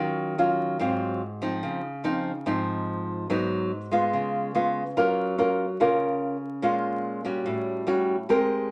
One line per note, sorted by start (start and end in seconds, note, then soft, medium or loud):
0.00 0.77 D#3 medium
0.00 0.34 F#3 soft
0.00 0.35 C#4 soft
0.00 0.35 F4 soft
0.38 0.76 F#3 medium
0.38 0.76 C#4 soft
0.38 0.76 F4 soft
0.79 1.61 G#2 medium
0.79 1.21 F#3 soft
0.79 1.21 C4 medium
0.79 1.21 F4 medium
1.42 1.80 F3 medium
1.42 1.80 C4 soft
1.42 1.80 D#4 medium
1.63 2.44 C#3 medium
2.04 2.31 F3 soft
2.04 2.31 C4 medium
2.04 2.31 D#4 medium
2.46 3.27 G#2 medium
2.46 3.26 F3 soft
2.46 3.26 C4 soft
2.46 3.26 D#4 medium
3.30 4.11 G#2 medium
3.30 3.71 F#3 medium
3.30 3.71 B3 medium
3.30 3.71 D#4 medium
3.92 4.51 G#3 soft
3.92 4.51 B3 soft
3.92 4.51 F4 medium
4.13 4.94 C#3 medium
4.55 4.82 G#3 medium
4.55 4.82 B3 medium
4.55 4.83 F4 medium
4.97 5.77 F#3 medium
4.97 5.34 C#4 medium
4.97 5.35 F4 soft
4.97 5.35 A#4 medium
5.38 5.65 C#4 soft
5.38 5.65 F4 soft
5.38 5.65 A#4 soft
5.80 6.61 C#3 medium
5.80 6.36 C#4 medium
5.80 6.36 F4 soft
5.80 6.36 A#4 medium
6.62 7.43 A#2 medium
6.62 7.22 G#3 medium
6.62 7.22 C#4 soft
6.62 7.22 F4 medium
7.25 7.84 G3 soft
7.25 7.84 C#4 medium
7.25 7.84 F#4 medium
7.46 8.27 A2 medium
7.87 8.15 G3 medium
7.87 8.15 C#4 medium
7.87 8.15 F#4 medium
8.29 8.71 G#3 medium
8.29 8.67 C4 soft
8.29 8.67 G4 soft
8.29 8.68 A#4 medium